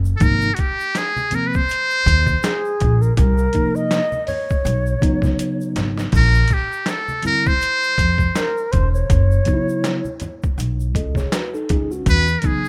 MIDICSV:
0, 0, Header, 1, 6, 480
1, 0, Start_track
1, 0, Tempo, 740741
1, 135, Time_signature, 4, 2, 24, 8
1, 8220, End_track
2, 0, Start_track
2, 0, Title_t, "Flute"
2, 0, Program_c, 0, 73
2, 1575, Note_on_c, 0, 68, 90
2, 1953, Note_on_c, 0, 70, 81
2, 1963, Note_off_c, 0, 68, 0
2, 2052, Note_off_c, 0, 70, 0
2, 2056, Note_on_c, 0, 70, 98
2, 2433, Note_on_c, 0, 75, 116
2, 2442, Note_off_c, 0, 70, 0
2, 2766, Note_off_c, 0, 75, 0
2, 2770, Note_on_c, 0, 73, 95
2, 3706, Note_off_c, 0, 73, 0
2, 5413, Note_on_c, 0, 70, 104
2, 5649, Note_on_c, 0, 72, 93
2, 5659, Note_off_c, 0, 70, 0
2, 5780, Note_off_c, 0, 72, 0
2, 5784, Note_on_c, 0, 73, 101
2, 6723, Note_off_c, 0, 73, 0
2, 8220, End_track
3, 0, Start_track
3, 0, Title_t, "Muted trumpet"
3, 0, Program_c, 1, 59
3, 108, Note_on_c, 1, 69, 74
3, 150, Note_on_c, 1, 70, 107
3, 160, Note_off_c, 1, 69, 0
3, 353, Note_on_c, 1, 66, 53
3, 362, Note_off_c, 1, 70, 0
3, 389, Note_on_c, 1, 67, 91
3, 399, Note_off_c, 1, 66, 0
3, 631, Note_on_c, 1, 68, 91
3, 641, Note_off_c, 1, 67, 0
3, 873, Note_on_c, 1, 70, 89
3, 883, Note_off_c, 1, 68, 0
3, 954, Note_on_c, 1, 71, 74
3, 964, Note_off_c, 1, 70, 0
3, 1012, Note_on_c, 1, 72, 97
3, 1022, Note_off_c, 1, 71, 0
3, 1824, Note_off_c, 1, 72, 0
3, 3994, Note_on_c, 1, 70, 98
3, 4231, Note_on_c, 1, 67, 82
3, 4241, Note_off_c, 1, 70, 0
3, 4469, Note_on_c, 1, 69, 81
3, 4479, Note_off_c, 1, 67, 0
3, 4702, Note_off_c, 1, 69, 0
3, 4708, Note_on_c, 1, 70, 97
3, 4842, Note_on_c, 1, 72, 96
3, 4852, Note_off_c, 1, 70, 0
3, 5659, Note_off_c, 1, 72, 0
3, 7837, Note_on_c, 1, 71, 100
3, 8031, Note_on_c, 1, 70, 56
3, 8040, Note_off_c, 1, 71, 0
3, 8073, Note_on_c, 1, 68, 81
3, 8082, Note_off_c, 1, 70, 0
3, 8220, Note_off_c, 1, 68, 0
3, 8220, End_track
4, 0, Start_track
4, 0, Title_t, "Tine electric piano"
4, 0, Program_c, 2, 4
4, 127, Note_on_c, 2, 48, 65
4, 132, Note_on_c, 2, 53, 58
4, 137, Note_on_c, 2, 58, 65
4, 142, Note_on_c, 2, 63, 80
4, 310, Note_off_c, 2, 48, 0
4, 313, Note_off_c, 2, 53, 0
4, 315, Note_off_c, 2, 58, 0
4, 318, Note_off_c, 2, 63, 0
4, 844, Note_on_c, 2, 48, 59
4, 850, Note_on_c, 2, 53, 59
4, 855, Note_on_c, 2, 58, 52
4, 862, Note_on_c, 2, 60, 67
4, 1029, Note_off_c, 2, 48, 0
4, 1032, Note_off_c, 2, 53, 0
4, 1034, Note_off_c, 2, 58, 0
4, 1037, Note_off_c, 2, 60, 0
4, 2285, Note_on_c, 2, 48, 69
4, 2290, Note_on_c, 2, 53, 68
4, 2297, Note_on_c, 2, 58, 70
4, 2299, Note_on_c, 2, 63, 76
4, 2585, Note_off_c, 2, 48, 0
4, 2588, Note_off_c, 2, 53, 0
4, 2591, Note_off_c, 2, 58, 0
4, 2592, Note_off_c, 2, 63, 0
4, 3243, Note_on_c, 2, 49, 77
4, 3251, Note_on_c, 2, 54, 79
4, 3254, Note_on_c, 2, 59, 80
4, 3258, Note_on_c, 2, 63, 94
4, 3928, Note_off_c, 2, 49, 0
4, 3932, Note_off_c, 2, 54, 0
4, 3934, Note_off_c, 2, 59, 0
4, 3936, Note_off_c, 2, 63, 0
4, 4681, Note_on_c, 2, 50, 63
4, 4686, Note_on_c, 2, 55, 59
4, 4691, Note_on_c, 2, 60, 55
4, 4697, Note_on_c, 2, 64, 68
4, 4867, Note_off_c, 2, 50, 0
4, 4870, Note_off_c, 2, 55, 0
4, 4872, Note_off_c, 2, 60, 0
4, 4875, Note_off_c, 2, 64, 0
4, 6123, Note_on_c, 2, 49, 72
4, 6129, Note_on_c, 2, 54, 70
4, 6133, Note_on_c, 2, 59, 66
4, 6139, Note_on_c, 2, 63, 72
4, 6181, Note_on_c, 2, 64, 89
4, 6185, Note_off_c, 2, 63, 0
4, 6480, Note_off_c, 2, 49, 0
4, 6483, Note_off_c, 2, 54, 0
4, 6485, Note_off_c, 2, 59, 0
4, 6509, Note_off_c, 2, 64, 0
4, 7094, Note_on_c, 2, 75, 54
4, 7099, Note_on_c, 2, 69, 54
4, 7226, Note_off_c, 2, 75, 0
4, 7229, Note_off_c, 2, 69, 0
4, 7236, Note_on_c, 2, 73, 64
4, 7240, Note_on_c, 2, 68, 53
4, 7331, Note_off_c, 2, 73, 0
4, 7333, Note_off_c, 2, 68, 0
4, 7334, Note_on_c, 2, 71, 71
4, 7338, Note_on_c, 2, 66, 60
4, 7466, Note_off_c, 2, 71, 0
4, 7468, Note_off_c, 2, 66, 0
4, 7477, Note_on_c, 2, 69, 68
4, 7481, Note_on_c, 2, 63, 60
4, 7571, Note_off_c, 2, 69, 0
4, 7574, Note_off_c, 2, 63, 0
4, 7580, Note_on_c, 2, 68, 75
4, 7584, Note_on_c, 2, 63, 62
4, 7710, Note_off_c, 2, 68, 0
4, 7711, Note_off_c, 2, 63, 0
4, 7720, Note_on_c, 2, 66, 69
4, 7726, Note_on_c, 2, 61, 51
4, 7945, Note_off_c, 2, 66, 0
4, 7948, Note_off_c, 2, 61, 0
4, 8048, Note_on_c, 2, 49, 66
4, 8054, Note_on_c, 2, 54, 62
4, 8059, Note_on_c, 2, 59, 61
4, 8065, Note_on_c, 2, 63, 71
4, 8220, Note_off_c, 2, 49, 0
4, 8220, Note_off_c, 2, 54, 0
4, 8220, Note_off_c, 2, 59, 0
4, 8220, Note_off_c, 2, 63, 0
4, 8220, End_track
5, 0, Start_track
5, 0, Title_t, "Upright bass"
5, 0, Program_c, 3, 32
5, 0, Note_on_c, 3, 30, 90
5, 82, Note_off_c, 3, 30, 0
5, 135, Note_on_c, 3, 32, 100
5, 316, Note_off_c, 3, 32, 0
5, 1336, Note_on_c, 3, 39, 99
5, 1516, Note_off_c, 3, 39, 0
5, 1822, Note_on_c, 3, 34, 88
5, 2000, Note_off_c, 3, 34, 0
5, 2058, Note_on_c, 3, 36, 117
5, 2238, Note_off_c, 3, 36, 0
5, 3013, Note_on_c, 3, 35, 105
5, 3195, Note_off_c, 3, 35, 0
5, 3253, Note_on_c, 3, 37, 82
5, 3434, Note_off_c, 3, 37, 0
5, 3730, Note_on_c, 3, 32, 83
5, 3913, Note_off_c, 3, 32, 0
5, 3970, Note_on_c, 3, 34, 107
5, 4153, Note_off_c, 3, 34, 0
5, 5170, Note_on_c, 3, 41, 83
5, 5353, Note_off_c, 3, 41, 0
5, 5659, Note_on_c, 3, 28, 89
5, 5838, Note_off_c, 3, 28, 0
5, 5896, Note_on_c, 3, 30, 106
5, 6076, Note_off_c, 3, 30, 0
5, 6854, Note_on_c, 3, 35, 97
5, 7095, Note_off_c, 3, 35, 0
5, 7095, Note_on_c, 3, 37, 81
5, 7276, Note_off_c, 3, 37, 0
5, 7582, Note_on_c, 3, 37, 90
5, 7760, Note_off_c, 3, 37, 0
5, 7817, Note_on_c, 3, 40, 100
5, 7997, Note_off_c, 3, 40, 0
5, 8220, End_track
6, 0, Start_track
6, 0, Title_t, "Drums"
6, 32, Note_on_c, 9, 82, 51
6, 97, Note_off_c, 9, 82, 0
6, 132, Note_on_c, 9, 42, 88
6, 136, Note_on_c, 9, 36, 118
6, 136, Note_on_c, 9, 82, 56
6, 197, Note_off_c, 9, 42, 0
6, 201, Note_off_c, 9, 36, 0
6, 201, Note_off_c, 9, 82, 0
6, 270, Note_on_c, 9, 82, 51
6, 335, Note_off_c, 9, 82, 0
6, 366, Note_on_c, 9, 42, 65
6, 367, Note_on_c, 9, 82, 38
6, 382, Note_on_c, 9, 36, 84
6, 431, Note_off_c, 9, 42, 0
6, 432, Note_off_c, 9, 82, 0
6, 446, Note_off_c, 9, 36, 0
6, 518, Note_on_c, 9, 82, 50
6, 583, Note_off_c, 9, 82, 0
6, 615, Note_on_c, 9, 38, 87
6, 618, Note_on_c, 9, 42, 81
6, 619, Note_on_c, 9, 82, 56
6, 680, Note_off_c, 9, 38, 0
6, 683, Note_off_c, 9, 42, 0
6, 684, Note_off_c, 9, 82, 0
6, 755, Note_on_c, 9, 63, 61
6, 755, Note_on_c, 9, 82, 38
6, 819, Note_off_c, 9, 63, 0
6, 819, Note_off_c, 9, 82, 0
6, 849, Note_on_c, 9, 42, 75
6, 855, Note_on_c, 9, 64, 59
6, 855, Note_on_c, 9, 82, 39
6, 914, Note_off_c, 9, 42, 0
6, 920, Note_off_c, 9, 64, 0
6, 920, Note_off_c, 9, 82, 0
6, 996, Note_on_c, 9, 82, 44
6, 1004, Note_on_c, 9, 36, 86
6, 1061, Note_off_c, 9, 82, 0
6, 1069, Note_off_c, 9, 36, 0
6, 1097, Note_on_c, 9, 82, 69
6, 1110, Note_on_c, 9, 42, 89
6, 1162, Note_off_c, 9, 82, 0
6, 1175, Note_off_c, 9, 42, 0
6, 1233, Note_on_c, 9, 82, 44
6, 1298, Note_off_c, 9, 82, 0
6, 1336, Note_on_c, 9, 82, 39
6, 1337, Note_on_c, 9, 36, 98
6, 1347, Note_on_c, 9, 42, 75
6, 1401, Note_off_c, 9, 82, 0
6, 1402, Note_off_c, 9, 36, 0
6, 1412, Note_off_c, 9, 42, 0
6, 1467, Note_on_c, 9, 36, 72
6, 1472, Note_on_c, 9, 63, 65
6, 1472, Note_on_c, 9, 82, 49
6, 1532, Note_off_c, 9, 36, 0
6, 1536, Note_off_c, 9, 63, 0
6, 1536, Note_off_c, 9, 82, 0
6, 1575, Note_on_c, 9, 82, 72
6, 1581, Note_on_c, 9, 38, 110
6, 1583, Note_on_c, 9, 42, 99
6, 1639, Note_off_c, 9, 82, 0
6, 1645, Note_off_c, 9, 38, 0
6, 1648, Note_off_c, 9, 42, 0
6, 1717, Note_on_c, 9, 82, 38
6, 1782, Note_off_c, 9, 82, 0
6, 1817, Note_on_c, 9, 42, 71
6, 1818, Note_on_c, 9, 64, 49
6, 1818, Note_on_c, 9, 82, 42
6, 1823, Note_on_c, 9, 36, 96
6, 1882, Note_off_c, 9, 42, 0
6, 1883, Note_off_c, 9, 64, 0
6, 1883, Note_off_c, 9, 82, 0
6, 1888, Note_off_c, 9, 36, 0
6, 1958, Note_on_c, 9, 82, 50
6, 2023, Note_off_c, 9, 82, 0
6, 2056, Note_on_c, 9, 36, 112
6, 2056, Note_on_c, 9, 42, 86
6, 2058, Note_on_c, 9, 82, 59
6, 2121, Note_off_c, 9, 36, 0
6, 2121, Note_off_c, 9, 42, 0
6, 2123, Note_off_c, 9, 82, 0
6, 2190, Note_on_c, 9, 82, 52
6, 2255, Note_off_c, 9, 82, 0
6, 2287, Note_on_c, 9, 42, 62
6, 2293, Note_on_c, 9, 82, 34
6, 2301, Note_on_c, 9, 36, 81
6, 2351, Note_off_c, 9, 42, 0
6, 2358, Note_off_c, 9, 82, 0
6, 2366, Note_off_c, 9, 36, 0
6, 2434, Note_on_c, 9, 82, 47
6, 2499, Note_off_c, 9, 82, 0
6, 2533, Note_on_c, 9, 38, 105
6, 2536, Note_on_c, 9, 42, 68
6, 2539, Note_on_c, 9, 82, 62
6, 2597, Note_off_c, 9, 38, 0
6, 2601, Note_off_c, 9, 42, 0
6, 2603, Note_off_c, 9, 82, 0
6, 2670, Note_on_c, 9, 63, 56
6, 2670, Note_on_c, 9, 82, 37
6, 2735, Note_off_c, 9, 63, 0
6, 2735, Note_off_c, 9, 82, 0
6, 2767, Note_on_c, 9, 46, 44
6, 2775, Note_on_c, 9, 64, 58
6, 2775, Note_on_c, 9, 82, 44
6, 2831, Note_off_c, 9, 46, 0
6, 2840, Note_off_c, 9, 64, 0
6, 2840, Note_off_c, 9, 82, 0
6, 2914, Note_on_c, 9, 82, 40
6, 2920, Note_on_c, 9, 36, 92
6, 2979, Note_off_c, 9, 82, 0
6, 2985, Note_off_c, 9, 36, 0
6, 3016, Note_on_c, 9, 82, 72
6, 3024, Note_on_c, 9, 42, 89
6, 3081, Note_off_c, 9, 82, 0
6, 3089, Note_off_c, 9, 42, 0
6, 3152, Note_on_c, 9, 82, 44
6, 3217, Note_off_c, 9, 82, 0
6, 3253, Note_on_c, 9, 36, 92
6, 3255, Note_on_c, 9, 82, 46
6, 3260, Note_on_c, 9, 42, 72
6, 3318, Note_off_c, 9, 36, 0
6, 3320, Note_off_c, 9, 82, 0
6, 3325, Note_off_c, 9, 42, 0
6, 3382, Note_on_c, 9, 36, 87
6, 3392, Note_on_c, 9, 63, 69
6, 3392, Note_on_c, 9, 82, 45
6, 3397, Note_on_c, 9, 38, 28
6, 3447, Note_off_c, 9, 36, 0
6, 3457, Note_off_c, 9, 63, 0
6, 3457, Note_off_c, 9, 82, 0
6, 3462, Note_off_c, 9, 38, 0
6, 3494, Note_on_c, 9, 42, 94
6, 3497, Note_on_c, 9, 82, 71
6, 3558, Note_off_c, 9, 42, 0
6, 3561, Note_off_c, 9, 82, 0
6, 3636, Note_on_c, 9, 82, 40
6, 3701, Note_off_c, 9, 82, 0
6, 3731, Note_on_c, 9, 42, 74
6, 3734, Note_on_c, 9, 38, 91
6, 3736, Note_on_c, 9, 64, 49
6, 3736, Note_on_c, 9, 82, 37
6, 3796, Note_off_c, 9, 42, 0
6, 3799, Note_off_c, 9, 38, 0
6, 3801, Note_off_c, 9, 64, 0
6, 3801, Note_off_c, 9, 82, 0
6, 3872, Note_on_c, 9, 38, 79
6, 3881, Note_on_c, 9, 82, 54
6, 3937, Note_off_c, 9, 38, 0
6, 3946, Note_off_c, 9, 82, 0
6, 3967, Note_on_c, 9, 49, 86
6, 3970, Note_on_c, 9, 36, 112
6, 3981, Note_on_c, 9, 82, 59
6, 4032, Note_off_c, 9, 49, 0
6, 4035, Note_off_c, 9, 36, 0
6, 4046, Note_off_c, 9, 82, 0
6, 4112, Note_on_c, 9, 82, 46
6, 4177, Note_off_c, 9, 82, 0
6, 4197, Note_on_c, 9, 42, 67
6, 4211, Note_on_c, 9, 82, 39
6, 4215, Note_on_c, 9, 36, 80
6, 4262, Note_off_c, 9, 42, 0
6, 4276, Note_off_c, 9, 82, 0
6, 4280, Note_off_c, 9, 36, 0
6, 4357, Note_on_c, 9, 82, 47
6, 4422, Note_off_c, 9, 82, 0
6, 4445, Note_on_c, 9, 38, 92
6, 4448, Note_on_c, 9, 42, 86
6, 4457, Note_on_c, 9, 82, 60
6, 4509, Note_off_c, 9, 38, 0
6, 4513, Note_off_c, 9, 42, 0
6, 4522, Note_off_c, 9, 82, 0
6, 4590, Note_on_c, 9, 63, 55
6, 4590, Note_on_c, 9, 82, 40
6, 4655, Note_off_c, 9, 63, 0
6, 4655, Note_off_c, 9, 82, 0
6, 4682, Note_on_c, 9, 42, 70
6, 4697, Note_on_c, 9, 64, 61
6, 4697, Note_on_c, 9, 82, 47
6, 4747, Note_off_c, 9, 42, 0
6, 4762, Note_off_c, 9, 64, 0
6, 4762, Note_off_c, 9, 82, 0
6, 4833, Note_on_c, 9, 82, 39
6, 4838, Note_on_c, 9, 36, 93
6, 4897, Note_off_c, 9, 82, 0
6, 4903, Note_off_c, 9, 36, 0
6, 4935, Note_on_c, 9, 82, 68
6, 4942, Note_on_c, 9, 42, 90
6, 5000, Note_off_c, 9, 82, 0
6, 5007, Note_off_c, 9, 42, 0
6, 5075, Note_on_c, 9, 82, 47
6, 5140, Note_off_c, 9, 82, 0
6, 5171, Note_on_c, 9, 36, 97
6, 5174, Note_on_c, 9, 82, 40
6, 5178, Note_on_c, 9, 42, 70
6, 5236, Note_off_c, 9, 36, 0
6, 5238, Note_off_c, 9, 82, 0
6, 5243, Note_off_c, 9, 42, 0
6, 5302, Note_on_c, 9, 36, 70
6, 5312, Note_on_c, 9, 63, 66
6, 5312, Note_on_c, 9, 82, 47
6, 5367, Note_off_c, 9, 36, 0
6, 5377, Note_off_c, 9, 63, 0
6, 5377, Note_off_c, 9, 82, 0
6, 5414, Note_on_c, 9, 38, 118
6, 5416, Note_on_c, 9, 82, 78
6, 5417, Note_on_c, 9, 42, 93
6, 5479, Note_off_c, 9, 38, 0
6, 5481, Note_off_c, 9, 42, 0
6, 5481, Note_off_c, 9, 82, 0
6, 5556, Note_on_c, 9, 82, 38
6, 5621, Note_off_c, 9, 82, 0
6, 5654, Note_on_c, 9, 42, 69
6, 5657, Note_on_c, 9, 64, 52
6, 5657, Note_on_c, 9, 82, 36
6, 5660, Note_on_c, 9, 36, 94
6, 5719, Note_off_c, 9, 42, 0
6, 5722, Note_off_c, 9, 64, 0
6, 5722, Note_off_c, 9, 82, 0
6, 5725, Note_off_c, 9, 36, 0
6, 5799, Note_on_c, 9, 82, 50
6, 5863, Note_off_c, 9, 82, 0
6, 5895, Note_on_c, 9, 36, 126
6, 5896, Note_on_c, 9, 42, 77
6, 5903, Note_on_c, 9, 82, 55
6, 5960, Note_off_c, 9, 36, 0
6, 5960, Note_off_c, 9, 42, 0
6, 5968, Note_off_c, 9, 82, 0
6, 6035, Note_on_c, 9, 82, 47
6, 6100, Note_off_c, 9, 82, 0
6, 6125, Note_on_c, 9, 42, 68
6, 6133, Note_on_c, 9, 82, 37
6, 6140, Note_on_c, 9, 36, 82
6, 6190, Note_off_c, 9, 42, 0
6, 6198, Note_off_c, 9, 82, 0
6, 6205, Note_off_c, 9, 36, 0
6, 6279, Note_on_c, 9, 82, 48
6, 6343, Note_off_c, 9, 82, 0
6, 6376, Note_on_c, 9, 38, 94
6, 6377, Note_on_c, 9, 82, 57
6, 6379, Note_on_c, 9, 42, 77
6, 6441, Note_off_c, 9, 38, 0
6, 6442, Note_off_c, 9, 82, 0
6, 6444, Note_off_c, 9, 42, 0
6, 6512, Note_on_c, 9, 63, 51
6, 6512, Note_on_c, 9, 82, 39
6, 6577, Note_off_c, 9, 63, 0
6, 6577, Note_off_c, 9, 82, 0
6, 6608, Note_on_c, 9, 42, 60
6, 6619, Note_on_c, 9, 64, 63
6, 6619, Note_on_c, 9, 82, 43
6, 6672, Note_off_c, 9, 42, 0
6, 6684, Note_off_c, 9, 64, 0
6, 6684, Note_off_c, 9, 82, 0
6, 6759, Note_on_c, 9, 82, 42
6, 6763, Note_on_c, 9, 36, 88
6, 6824, Note_off_c, 9, 82, 0
6, 6827, Note_off_c, 9, 36, 0
6, 6860, Note_on_c, 9, 82, 73
6, 6868, Note_on_c, 9, 42, 94
6, 6925, Note_off_c, 9, 82, 0
6, 6933, Note_off_c, 9, 42, 0
6, 6999, Note_on_c, 9, 82, 45
6, 7064, Note_off_c, 9, 82, 0
6, 7095, Note_on_c, 9, 36, 90
6, 7100, Note_on_c, 9, 42, 70
6, 7101, Note_on_c, 9, 82, 48
6, 7160, Note_off_c, 9, 36, 0
6, 7165, Note_off_c, 9, 42, 0
6, 7165, Note_off_c, 9, 82, 0
6, 7225, Note_on_c, 9, 36, 74
6, 7238, Note_on_c, 9, 63, 66
6, 7238, Note_on_c, 9, 82, 50
6, 7243, Note_on_c, 9, 38, 32
6, 7290, Note_off_c, 9, 36, 0
6, 7303, Note_off_c, 9, 63, 0
6, 7303, Note_off_c, 9, 82, 0
6, 7308, Note_off_c, 9, 38, 0
6, 7337, Note_on_c, 9, 38, 117
6, 7339, Note_on_c, 9, 42, 101
6, 7341, Note_on_c, 9, 82, 74
6, 7402, Note_off_c, 9, 38, 0
6, 7404, Note_off_c, 9, 42, 0
6, 7405, Note_off_c, 9, 82, 0
6, 7481, Note_on_c, 9, 82, 39
6, 7546, Note_off_c, 9, 82, 0
6, 7577, Note_on_c, 9, 42, 76
6, 7581, Note_on_c, 9, 64, 50
6, 7581, Note_on_c, 9, 82, 38
6, 7583, Note_on_c, 9, 36, 92
6, 7641, Note_off_c, 9, 42, 0
6, 7646, Note_off_c, 9, 64, 0
6, 7646, Note_off_c, 9, 82, 0
6, 7648, Note_off_c, 9, 36, 0
6, 7722, Note_on_c, 9, 82, 54
6, 7787, Note_off_c, 9, 82, 0
6, 7816, Note_on_c, 9, 36, 123
6, 7816, Note_on_c, 9, 42, 80
6, 7826, Note_on_c, 9, 82, 61
6, 7881, Note_off_c, 9, 36, 0
6, 7881, Note_off_c, 9, 42, 0
6, 7891, Note_off_c, 9, 82, 0
6, 7955, Note_on_c, 9, 82, 50
6, 8020, Note_off_c, 9, 82, 0
6, 8047, Note_on_c, 9, 42, 65
6, 8056, Note_on_c, 9, 82, 36
6, 8062, Note_on_c, 9, 36, 82
6, 8112, Note_off_c, 9, 42, 0
6, 8121, Note_off_c, 9, 82, 0
6, 8126, Note_off_c, 9, 36, 0
6, 8198, Note_on_c, 9, 82, 50
6, 8220, Note_off_c, 9, 82, 0
6, 8220, End_track
0, 0, End_of_file